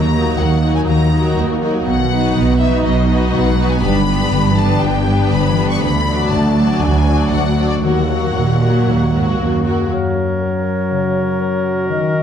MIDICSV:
0, 0, Header, 1, 11, 480
1, 0, Start_track
1, 0, Tempo, 493827
1, 1807, Time_signature, 4, 2, 24, 8
1, 6618, Tempo, 515021
1, 9498, Tempo, 500835
1, 11731, End_track
2, 0, Start_track
2, 0, Title_t, "Violin section"
2, 0, Program_c, 0, 48
2, 0, Note_on_c, 0, 82, 72
2, 377, Note_off_c, 0, 82, 0
2, 380, Note_on_c, 0, 78, 64
2, 732, Note_on_c, 0, 80, 63
2, 734, Note_off_c, 0, 78, 0
2, 779, Note_off_c, 0, 80, 0
2, 854, Note_on_c, 0, 82, 66
2, 1321, Note_off_c, 0, 82, 0
2, 1816, Note_on_c, 0, 78, 80
2, 2492, Note_off_c, 0, 78, 0
2, 2532, Note_on_c, 0, 76, 73
2, 2763, Note_on_c, 0, 75, 70
2, 2768, Note_off_c, 0, 76, 0
2, 3235, Note_off_c, 0, 75, 0
2, 3254, Note_on_c, 0, 78, 77
2, 3612, Note_off_c, 0, 78, 0
2, 3612, Note_on_c, 0, 80, 78
2, 3720, Note_on_c, 0, 83, 92
2, 3730, Note_off_c, 0, 80, 0
2, 4444, Note_off_c, 0, 83, 0
2, 4449, Note_on_c, 0, 81, 80
2, 4686, Note_on_c, 0, 79, 82
2, 4689, Note_off_c, 0, 81, 0
2, 5170, Note_off_c, 0, 79, 0
2, 5172, Note_on_c, 0, 83, 80
2, 5533, Note_off_c, 0, 83, 0
2, 5544, Note_on_c, 0, 85, 79
2, 5651, Note_on_c, 0, 83, 90
2, 5656, Note_off_c, 0, 85, 0
2, 6125, Note_off_c, 0, 83, 0
2, 6129, Note_on_c, 0, 81, 76
2, 6613, Note_on_c, 0, 80, 81
2, 6616, Note_off_c, 0, 81, 0
2, 7084, Note_off_c, 0, 80, 0
2, 7084, Note_on_c, 0, 78, 75
2, 7436, Note_off_c, 0, 78, 0
2, 7447, Note_on_c, 0, 74, 60
2, 7495, Note_off_c, 0, 74, 0
2, 7568, Note_on_c, 0, 78, 64
2, 8991, Note_off_c, 0, 78, 0
2, 11731, End_track
3, 0, Start_track
3, 0, Title_t, "Flute"
3, 0, Program_c, 1, 73
3, 9502, Note_on_c, 1, 73, 42
3, 11381, Note_off_c, 1, 73, 0
3, 11413, Note_on_c, 1, 75, 55
3, 11731, Note_off_c, 1, 75, 0
3, 11731, End_track
4, 0, Start_track
4, 0, Title_t, "Oboe"
4, 0, Program_c, 2, 68
4, 9496, Note_on_c, 2, 70, 44
4, 11731, Note_off_c, 2, 70, 0
4, 11731, End_track
5, 0, Start_track
5, 0, Title_t, "Violin section"
5, 0, Program_c, 3, 48
5, 0, Note_on_c, 3, 66, 43
5, 0, Note_on_c, 3, 70, 44
5, 127, Note_off_c, 3, 66, 0
5, 128, Note_off_c, 3, 70, 0
5, 139, Note_on_c, 3, 66, 44
5, 139, Note_on_c, 3, 70, 40
5, 603, Note_off_c, 3, 66, 0
5, 603, Note_off_c, 3, 70, 0
5, 615, Note_on_c, 3, 66, 41
5, 620, Note_on_c, 3, 70, 43
5, 1083, Note_off_c, 3, 66, 0
5, 1086, Note_off_c, 3, 70, 0
5, 1097, Note_on_c, 3, 70, 50
5, 1098, Note_on_c, 3, 66, 48
5, 1557, Note_off_c, 3, 66, 0
5, 1561, Note_off_c, 3, 70, 0
5, 1568, Note_on_c, 3, 66, 44
5, 1572, Note_on_c, 3, 70, 48
5, 1802, Note_off_c, 3, 66, 0
5, 1804, Note_off_c, 3, 70, 0
5, 2050, Note_on_c, 3, 71, 46
5, 2053, Note_on_c, 3, 66, 42
5, 2518, Note_off_c, 3, 71, 0
5, 2520, Note_off_c, 3, 66, 0
5, 2530, Note_on_c, 3, 66, 51
5, 2533, Note_on_c, 3, 71, 47
5, 2998, Note_off_c, 3, 66, 0
5, 3000, Note_off_c, 3, 71, 0
5, 3009, Note_on_c, 3, 66, 54
5, 3013, Note_on_c, 3, 71, 50
5, 3475, Note_off_c, 3, 66, 0
5, 3476, Note_off_c, 3, 71, 0
5, 3486, Note_on_c, 3, 66, 52
5, 3488, Note_on_c, 3, 71, 47
5, 3708, Note_off_c, 3, 71, 0
5, 3718, Note_on_c, 3, 67, 51
5, 3720, Note_on_c, 3, 71, 52
5, 3723, Note_off_c, 3, 66, 0
5, 3940, Note_off_c, 3, 67, 0
5, 3947, Note_off_c, 3, 71, 0
5, 3951, Note_on_c, 3, 67, 52
5, 3959, Note_on_c, 3, 71, 48
5, 4429, Note_off_c, 3, 71, 0
5, 4430, Note_off_c, 3, 67, 0
5, 4441, Note_on_c, 3, 71, 46
5, 4448, Note_on_c, 3, 67, 49
5, 4908, Note_off_c, 3, 71, 0
5, 4909, Note_off_c, 3, 67, 0
5, 4920, Note_on_c, 3, 67, 56
5, 4920, Note_on_c, 3, 71, 59
5, 5398, Note_off_c, 3, 67, 0
5, 5398, Note_off_c, 3, 71, 0
5, 5413, Note_on_c, 3, 67, 55
5, 5413, Note_on_c, 3, 71, 56
5, 5648, Note_off_c, 3, 67, 0
5, 5648, Note_off_c, 3, 71, 0
5, 5895, Note_on_c, 3, 66, 48
5, 5895, Note_on_c, 3, 74, 47
5, 6368, Note_off_c, 3, 66, 0
5, 6368, Note_off_c, 3, 74, 0
5, 6384, Note_on_c, 3, 66, 48
5, 6387, Note_on_c, 3, 74, 48
5, 6846, Note_off_c, 3, 66, 0
5, 6848, Note_off_c, 3, 74, 0
5, 6858, Note_on_c, 3, 74, 49
5, 6859, Note_on_c, 3, 66, 52
5, 7318, Note_off_c, 3, 74, 0
5, 7319, Note_off_c, 3, 66, 0
5, 7335, Note_on_c, 3, 66, 44
5, 7338, Note_on_c, 3, 74, 44
5, 7566, Note_off_c, 3, 66, 0
5, 7568, Note_off_c, 3, 74, 0
5, 7576, Note_on_c, 3, 66, 45
5, 7580, Note_on_c, 3, 70, 41
5, 7810, Note_off_c, 3, 66, 0
5, 7812, Note_off_c, 3, 70, 0
5, 7822, Note_on_c, 3, 70, 41
5, 7823, Note_on_c, 3, 66, 40
5, 8293, Note_off_c, 3, 66, 0
5, 8293, Note_off_c, 3, 70, 0
5, 8310, Note_on_c, 3, 70, 43
5, 8314, Note_on_c, 3, 66, 40
5, 8776, Note_off_c, 3, 66, 0
5, 8776, Note_off_c, 3, 70, 0
5, 8787, Note_on_c, 3, 66, 46
5, 8790, Note_on_c, 3, 70, 44
5, 9255, Note_off_c, 3, 66, 0
5, 9256, Note_off_c, 3, 70, 0
5, 9267, Note_on_c, 3, 66, 39
5, 9267, Note_on_c, 3, 70, 39
5, 9497, Note_off_c, 3, 66, 0
5, 9497, Note_off_c, 3, 70, 0
5, 11731, End_track
6, 0, Start_track
6, 0, Title_t, "Clarinet"
6, 0, Program_c, 4, 71
6, 9499, Note_on_c, 4, 66, 40
6, 11731, Note_off_c, 4, 66, 0
6, 11731, End_track
7, 0, Start_track
7, 0, Title_t, "Viola section"
7, 0, Program_c, 5, 48
7, 0, Note_on_c, 5, 54, 40
7, 0, Note_on_c, 5, 63, 38
7, 127, Note_off_c, 5, 63, 0
7, 129, Note_off_c, 5, 54, 0
7, 138, Note_on_c, 5, 63, 42
7, 140, Note_on_c, 5, 54, 42
7, 603, Note_off_c, 5, 63, 0
7, 604, Note_off_c, 5, 54, 0
7, 617, Note_on_c, 5, 63, 47
7, 621, Note_on_c, 5, 54, 45
7, 1079, Note_off_c, 5, 54, 0
7, 1082, Note_off_c, 5, 63, 0
7, 1091, Note_on_c, 5, 54, 46
7, 1094, Note_on_c, 5, 63, 49
7, 1552, Note_off_c, 5, 54, 0
7, 1554, Note_off_c, 5, 63, 0
7, 1564, Note_on_c, 5, 54, 46
7, 1566, Note_on_c, 5, 63, 46
7, 1800, Note_off_c, 5, 54, 0
7, 1801, Note_off_c, 5, 63, 0
7, 2051, Note_on_c, 5, 59, 46
7, 2053, Note_on_c, 5, 63, 48
7, 2516, Note_off_c, 5, 63, 0
7, 2519, Note_off_c, 5, 59, 0
7, 2527, Note_on_c, 5, 63, 56
7, 2532, Note_on_c, 5, 59, 58
7, 2997, Note_off_c, 5, 63, 0
7, 2999, Note_off_c, 5, 59, 0
7, 3009, Note_on_c, 5, 59, 50
7, 3010, Note_on_c, 5, 63, 51
7, 3476, Note_off_c, 5, 63, 0
7, 3477, Note_off_c, 5, 59, 0
7, 3488, Note_on_c, 5, 63, 47
7, 3489, Note_on_c, 5, 59, 51
7, 3721, Note_off_c, 5, 59, 0
7, 3723, Note_off_c, 5, 63, 0
7, 3732, Note_on_c, 5, 59, 48
7, 3735, Note_on_c, 5, 62, 49
7, 3957, Note_off_c, 5, 62, 0
7, 3959, Note_off_c, 5, 59, 0
7, 3969, Note_on_c, 5, 62, 48
7, 3971, Note_on_c, 5, 59, 49
7, 4439, Note_off_c, 5, 62, 0
7, 4440, Note_off_c, 5, 59, 0
7, 4456, Note_on_c, 5, 62, 60
7, 4459, Note_on_c, 5, 59, 54
7, 4919, Note_off_c, 5, 62, 0
7, 4922, Note_off_c, 5, 59, 0
7, 4931, Note_on_c, 5, 62, 55
7, 4934, Note_on_c, 5, 59, 52
7, 5403, Note_off_c, 5, 62, 0
7, 5405, Note_off_c, 5, 59, 0
7, 5415, Note_on_c, 5, 59, 51
7, 5417, Note_on_c, 5, 62, 52
7, 5650, Note_off_c, 5, 59, 0
7, 5650, Note_off_c, 5, 62, 0
7, 5900, Note_on_c, 5, 62, 50
7, 5901, Note_on_c, 5, 54, 50
7, 6367, Note_off_c, 5, 54, 0
7, 6370, Note_off_c, 5, 62, 0
7, 6379, Note_on_c, 5, 54, 58
7, 6381, Note_on_c, 5, 62, 53
7, 6840, Note_off_c, 5, 54, 0
7, 6843, Note_off_c, 5, 62, 0
7, 6851, Note_on_c, 5, 54, 47
7, 6854, Note_on_c, 5, 62, 47
7, 7314, Note_off_c, 5, 54, 0
7, 7316, Note_off_c, 5, 62, 0
7, 7328, Note_on_c, 5, 62, 45
7, 7332, Note_on_c, 5, 54, 44
7, 7551, Note_off_c, 5, 54, 0
7, 7559, Note_on_c, 5, 66, 42
7, 7562, Note_on_c, 5, 54, 44
7, 7563, Note_off_c, 5, 62, 0
7, 7792, Note_off_c, 5, 54, 0
7, 7792, Note_off_c, 5, 66, 0
7, 7803, Note_on_c, 5, 54, 43
7, 7803, Note_on_c, 5, 66, 38
7, 8279, Note_off_c, 5, 54, 0
7, 8283, Note_off_c, 5, 66, 0
7, 8291, Note_on_c, 5, 54, 50
7, 8295, Note_on_c, 5, 66, 48
7, 8766, Note_off_c, 5, 54, 0
7, 8769, Note_off_c, 5, 66, 0
7, 8779, Note_on_c, 5, 54, 42
7, 8781, Note_on_c, 5, 66, 41
7, 9244, Note_off_c, 5, 66, 0
7, 9247, Note_off_c, 5, 54, 0
7, 9255, Note_on_c, 5, 66, 41
7, 9258, Note_on_c, 5, 54, 41
7, 9491, Note_off_c, 5, 66, 0
7, 9493, Note_off_c, 5, 54, 0
7, 11731, End_track
8, 0, Start_track
8, 0, Title_t, "Harp"
8, 0, Program_c, 6, 46
8, 0, Note_on_c, 6, 51, 47
8, 0, Note_on_c, 6, 66, 37
8, 66, Note_on_c, 6, 58, 42
8, 221, Note_off_c, 6, 66, 0
8, 233, Note_on_c, 6, 66, 43
8, 371, Note_off_c, 6, 58, 0
8, 382, Note_on_c, 6, 58, 40
8, 540, Note_on_c, 6, 59, 33
8, 688, Note_off_c, 6, 58, 0
8, 699, Note_on_c, 6, 58, 40
8, 807, Note_off_c, 6, 59, 0
8, 855, Note_off_c, 6, 51, 0
8, 867, Note_on_c, 6, 51, 46
8, 1024, Note_on_c, 6, 63, 37
8, 1169, Note_off_c, 6, 66, 0
8, 1181, Note_on_c, 6, 66, 46
8, 1328, Note_off_c, 6, 58, 0
8, 1340, Note_on_c, 6, 58, 42
8, 1496, Note_on_c, 6, 59, 35
8, 1642, Note_off_c, 6, 58, 0
8, 1653, Note_on_c, 6, 58, 39
8, 1763, Note_off_c, 6, 59, 0
8, 1807, Note_on_c, 6, 47, 56
8, 1829, Note_off_c, 6, 58, 0
8, 1834, Note_off_c, 6, 51, 0
8, 1973, Note_on_c, 6, 54, 43
8, 2120, Note_off_c, 6, 66, 0
8, 2132, Note_on_c, 6, 66, 45
8, 2285, Note_off_c, 6, 54, 0
8, 2297, Note_on_c, 6, 54, 44
8, 2452, Note_on_c, 6, 56, 36
8, 2603, Note_off_c, 6, 54, 0
8, 2615, Note_on_c, 6, 54, 42
8, 2720, Note_off_c, 6, 56, 0
8, 2763, Note_off_c, 6, 47, 0
8, 2775, Note_on_c, 6, 47, 51
8, 2920, Note_off_c, 6, 63, 0
8, 2932, Note_on_c, 6, 63, 45
8, 3077, Note_off_c, 6, 66, 0
8, 3089, Note_on_c, 6, 66, 48
8, 3233, Note_off_c, 6, 54, 0
8, 3245, Note_on_c, 6, 54, 46
8, 3403, Note_on_c, 6, 56, 40
8, 3547, Note_off_c, 6, 54, 0
8, 3559, Note_on_c, 6, 54, 42
8, 3678, Note_off_c, 6, 56, 0
8, 3718, Note_on_c, 6, 43, 62
8, 3743, Note_off_c, 6, 54, 0
8, 3748, Note_off_c, 6, 66, 0
8, 3750, Note_off_c, 6, 63, 0
8, 3752, Note_off_c, 6, 47, 0
8, 3884, Note_on_c, 6, 50, 45
8, 4039, Note_on_c, 6, 67, 50
8, 4184, Note_off_c, 6, 50, 0
8, 4196, Note_on_c, 6, 50, 45
8, 4360, Note_on_c, 6, 52, 38
8, 4512, Note_off_c, 6, 50, 0
8, 4523, Note_on_c, 6, 50, 49
8, 4636, Note_off_c, 6, 52, 0
8, 4677, Note_off_c, 6, 43, 0
8, 4688, Note_on_c, 6, 43, 54
8, 4844, Note_on_c, 6, 62, 43
8, 4996, Note_off_c, 6, 67, 0
8, 5007, Note_on_c, 6, 67, 47
8, 5155, Note_off_c, 6, 50, 0
8, 5167, Note_on_c, 6, 50, 43
8, 5332, Note_on_c, 6, 52, 41
8, 5472, Note_off_c, 6, 50, 0
8, 5483, Note_on_c, 6, 50, 46
8, 5605, Note_off_c, 6, 52, 0
8, 5630, Note_off_c, 6, 50, 0
8, 5642, Note_on_c, 6, 50, 64
8, 5671, Note_off_c, 6, 67, 0
8, 5672, Note_off_c, 6, 43, 0
8, 5804, Note_on_c, 6, 57, 46
8, 5967, Note_on_c, 6, 66, 46
8, 6119, Note_off_c, 6, 57, 0
8, 6131, Note_on_c, 6, 57, 45
8, 6298, Note_on_c, 6, 59, 38
8, 6449, Note_off_c, 6, 57, 0
8, 6461, Note_on_c, 6, 57, 44
8, 6571, Note_off_c, 6, 59, 0
8, 6612, Note_off_c, 6, 50, 0
8, 6624, Note_on_c, 6, 50, 45
8, 6768, Note_off_c, 6, 62, 0
8, 6779, Note_on_c, 6, 62, 37
8, 6920, Note_off_c, 6, 66, 0
8, 6931, Note_on_c, 6, 66, 41
8, 7077, Note_off_c, 6, 57, 0
8, 7089, Note_on_c, 6, 57, 41
8, 7250, Note_on_c, 6, 59, 32
8, 7400, Note_off_c, 6, 57, 0
8, 7520, Note_off_c, 6, 59, 0
8, 7571, Note_on_c, 6, 51, 49
8, 7588, Note_off_c, 6, 50, 0
8, 7588, Note_off_c, 6, 62, 0
8, 7738, Note_on_c, 6, 58, 41
8, 7884, Note_off_c, 6, 66, 0
8, 7896, Note_on_c, 6, 66, 39
8, 8051, Note_off_c, 6, 58, 0
8, 8062, Note_on_c, 6, 58, 36
8, 8224, Note_on_c, 6, 59, 32
8, 8375, Note_off_c, 6, 58, 0
8, 8386, Note_on_c, 6, 58, 40
8, 8494, Note_off_c, 6, 59, 0
8, 8526, Note_off_c, 6, 51, 0
8, 8537, Note_on_c, 6, 51, 44
8, 8687, Note_off_c, 6, 66, 0
8, 8698, Note_on_c, 6, 66, 36
8, 8849, Note_off_c, 6, 58, 0
8, 8860, Note_on_c, 6, 58, 39
8, 9007, Note_off_c, 6, 66, 0
8, 9018, Note_on_c, 6, 66, 37
8, 9174, Note_on_c, 6, 68, 32
8, 9323, Note_off_c, 6, 58, 0
8, 9335, Note_on_c, 6, 58, 38
8, 9448, Note_off_c, 6, 68, 0
8, 9495, Note_on_c, 6, 42, 40
8, 9517, Note_off_c, 6, 51, 0
8, 9740, Note_on_c, 6, 61, 31
8, 9976, Note_on_c, 6, 70, 30
8, 10199, Note_off_c, 6, 66, 0
8, 10210, Note_on_c, 6, 66, 31
8, 10453, Note_on_c, 6, 49, 31
8, 10681, Note_off_c, 6, 61, 0
8, 10692, Note_on_c, 6, 61, 34
8, 10916, Note_off_c, 6, 70, 0
8, 10927, Note_on_c, 6, 70, 36
8, 11156, Note_off_c, 6, 66, 0
8, 11167, Note_on_c, 6, 66, 34
8, 11405, Note_on_c, 6, 51, 43
8, 11435, Note_off_c, 6, 42, 0
8, 11435, Note_off_c, 6, 49, 0
8, 11435, Note_off_c, 6, 61, 0
8, 11646, Note_on_c, 6, 63, 39
8, 11731, Note_off_c, 6, 51, 0
8, 11731, Note_off_c, 6, 58, 0
8, 11731, Note_off_c, 6, 63, 0
8, 11731, Note_off_c, 6, 66, 0
8, 11731, Note_off_c, 6, 70, 0
8, 11731, End_track
9, 0, Start_track
9, 0, Title_t, "French horn section"
9, 0, Program_c, 7, 60
9, 9488, Note_on_c, 7, 54, 47
9, 11374, Note_off_c, 7, 54, 0
9, 11422, Note_on_c, 7, 51, 54
9, 11731, Note_off_c, 7, 51, 0
9, 11731, End_track
10, 0, Start_track
10, 0, Title_t, "Cello section"
10, 0, Program_c, 8, 48
10, 0, Note_on_c, 8, 39, 53
10, 321, Note_off_c, 8, 39, 0
10, 382, Note_on_c, 8, 39, 50
10, 799, Note_off_c, 8, 39, 0
10, 855, Note_on_c, 8, 39, 60
10, 1275, Note_off_c, 8, 39, 0
10, 1336, Note_on_c, 8, 39, 56
10, 1753, Note_off_c, 8, 39, 0
10, 1805, Note_on_c, 8, 47, 60
10, 2229, Note_off_c, 8, 47, 0
10, 2283, Note_on_c, 8, 47, 57
10, 2707, Note_off_c, 8, 47, 0
10, 2765, Note_on_c, 8, 47, 66
10, 3190, Note_off_c, 8, 47, 0
10, 3253, Note_on_c, 8, 47, 64
10, 3674, Note_off_c, 8, 47, 0
10, 3733, Note_on_c, 8, 43, 68
10, 4154, Note_off_c, 8, 43, 0
10, 4218, Note_on_c, 8, 43, 64
10, 4637, Note_off_c, 8, 43, 0
10, 4694, Note_on_c, 8, 43, 71
10, 5117, Note_off_c, 8, 43, 0
10, 5169, Note_on_c, 8, 43, 67
10, 5595, Note_off_c, 8, 43, 0
10, 5652, Note_on_c, 8, 38, 64
10, 6078, Note_off_c, 8, 38, 0
10, 6135, Note_on_c, 8, 38, 62
10, 6562, Note_off_c, 8, 38, 0
10, 6621, Note_on_c, 8, 38, 64
10, 7032, Note_off_c, 8, 38, 0
10, 7090, Note_on_c, 8, 38, 56
10, 7510, Note_off_c, 8, 38, 0
10, 7571, Note_on_c, 8, 39, 56
10, 7999, Note_off_c, 8, 39, 0
10, 8063, Note_on_c, 8, 46, 58
10, 8746, Note_off_c, 8, 46, 0
10, 8786, Note_on_c, 8, 44, 52
10, 9018, Note_off_c, 8, 44, 0
10, 9028, Note_on_c, 8, 42, 47
10, 9493, Note_off_c, 8, 42, 0
10, 11731, End_track
11, 0, Start_track
11, 0, Title_t, "Double bass section"
11, 0, Program_c, 10, 48
11, 0, Note_on_c, 10, 39, 58
11, 324, Note_off_c, 10, 39, 0
11, 384, Note_on_c, 10, 39, 50
11, 800, Note_off_c, 10, 39, 0
11, 854, Note_on_c, 10, 39, 57
11, 1275, Note_off_c, 10, 39, 0
11, 1335, Note_on_c, 10, 39, 59
11, 1753, Note_off_c, 10, 39, 0
11, 1812, Note_on_c, 10, 35, 61
11, 2233, Note_off_c, 10, 35, 0
11, 2295, Note_on_c, 10, 35, 63
11, 2713, Note_off_c, 10, 35, 0
11, 2771, Note_on_c, 10, 35, 67
11, 3192, Note_off_c, 10, 35, 0
11, 3252, Note_on_c, 10, 35, 63
11, 3674, Note_off_c, 10, 35, 0
11, 3729, Note_on_c, 10, 31, 67
11, 4152, Note_off_c, 10, 31, 0
11, 4210, Note_on_c, 10, 31, 64
11, 4633, Note_off_c, 10, 31, 0
11, 4695, Note_on_c, 10, 31, 68
11, 5117, Note_off_c, 10, 31, 0
11, 5178, Note_on_c, 10, 31, 66
11, 5600, Note_off_c, 10, 31, 0
11, 5655, Note_on_c, 10, 38, 71
11, 6079, Note_off_c, 10, 38, 0
11, 6139, Note_on_c, 10, 38, 68
11, 6564, Note_off_c, 10, 38, 0
11, 6627, Note_on_c, 10, 38, 65
11, 7035, Note_off_c, 10, 38, 0
11, 7091, Note_on_c, 10, 38, 59
11, 7511, Note_off_c, 10, 38, 0
11, 7572, Note_on_c, 10, 39, 54
11, 7999, Note_off_c, 10, 39, 0
11, 8060, Note_on_c, 10, 39, 53
11, 8485, Note_off_c, 10, 39, 0
11, 8540, Note_on_c, 10, 39, 58
11, 8963, Note_off_c, 10, 39, 0
11, 9022, Note_on_c, 10, 39, 51
11, 9444, Note_off_c, 10, 39, 0
11, 11731, End_track
0, 0, End_of_file